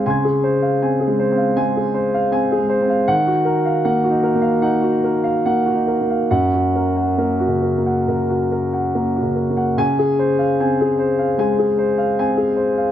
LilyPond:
<<
  \new Staff \with { instrumentName = "Grand piano" } { \time 4/4 \key des \major \tempo 4 = 76 << { <c''' aes'''>1 | ges''8 r2. r8 | ges''8 r2. r8 | aes''8 r2. r8 | } \\ { <f'' aes''>16 aes'16 c''16 f''16 aes''16 aes'16 c''16 f''16 aes''16 aes'16 c''16 f''16 aes''16 aes'16 c''16 f''16 | r16 ges'16 bes'16 f''16 ges''16 ges'16 bes'16 f''16 ges''16 ges'16 bes'16 f''16 ges''16 ges'16 bes'16 f''16 | r16 ges'16 bes'16 ges''16 bes'16 ges'16 bes'16 ges''16 bes'16 ges'16 bes'16 ges''16 bes'16 ges'16 bes'16 ges''16 | r16 aes'16 c''16 f''16 aes''16 aes'16 c''16 f''16 aes''16 aes'16 c''16 f''16 aes''16 aes'16 c''16 f''16 | } >> }
  \new Staff \with { instrumentName = "Grand piano" } { \time 4/4 \key des \major <des c'>4 \tuplet 3/2 { c'8 aes8 c'8 } aes8 r8 \tuplet 3/2 { c'8 aes8 c'8 } | ees4 \tuplet 3/2 { bes8 ees'8 bes8 } ees'8 r8 \tuplet 3/2 { bes8 ees'8 bes8 } | ges,4 \tuplet 3/2 { bes8 des8 bes8 } des8 r8 \tuplet 3/2 { bes8 des8 bes8 } | des4 c'8 r8 aes8 r8 c'8 r8 | }
>>